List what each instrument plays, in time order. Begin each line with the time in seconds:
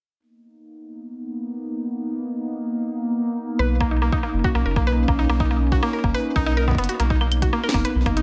0.19 ambient pad A#3 B3 D#4
3.59 analog synth bass B1, ambient pad C#4, synth arpeggio sound B4
3.81 synth arpeggio sound A#3, kick
3.91 synth arpeggio sound D#4
4.02 synth arpeggio sound A#3
4.12 synth arpeggio sound D#4, kick
4.23 synth arpeggio sound A#3
4.34 analog synth bass F#1
4.44 synth arpeggio sound F#4, kick
4.55 analog synth bass B1, synth arpeggio sound A#3
4.66 analog synth bass F#1, synth arpeggio sound A#4
4.76 analog synth bass B1, synth arpeggio sound A#3, kick
4.87 synth arpeggio sound B4
5.08 analog synth bass B1, synth arpeggio sound A#3, kick
5.19 synth arpeggio sound D#4
5.29 analog synth bass B1, synth arpeggio sound A#3
5.40 synth arpeggio sound D#4, kick
5.51 synth arpeggio sound A#3
5.72 synth arpeggio sound F#4, kick
5.83 synth arpeggio sound A#3
5.93 synth arpeggio sound A#4
6.04 analog synth bass F#1, synth arpeggio sound A#3, kick
6.14 synth arpeggio sound B4
6.36 analog synth bass B1, synth arpeggio sound D#4, kick
6.46 synth arpeggio sound D#4
6.57 synth arpeggio sound A#4
6.68 synth arpeggio sound B3, kick
6.71 kick
6.75 analog synth bass F#1, synth arpeggio sound B3, kick, closed hi-hat
6.84 closed hi-hat
6.89 synth arpeggio sound F#4, closed hi-hat
7.00 analog synth bass B1, synth arpeggio sound A#3, ambient pad A#3 B3 D#4, closed hi-hat
7.10 synth arpeggio sound D#4, kick
7.21 synth arpeggio sound A#3, claves
7.32 closed hi-hat, claves
7.42 synth arpeggio sound F#4, kick, closed hi-hat
7.53 synth arpeggio sound A#3
7.64 synth arpeggio sound A#4, claves
7.69 snare
7.74 analog synth bass F#1, synth arpeggio sound A#3, kick, closed hi-hat
7.85 synth arpeggio sound B4, closed hi-hat
7.95 analog synth bass B1
8.06 analog synth bass F#1, synth arpeggio sound A#3, kick, closed hi-hat
8.17 analog synth bass B1, synth arpeggio sound D#4, closed hi-hat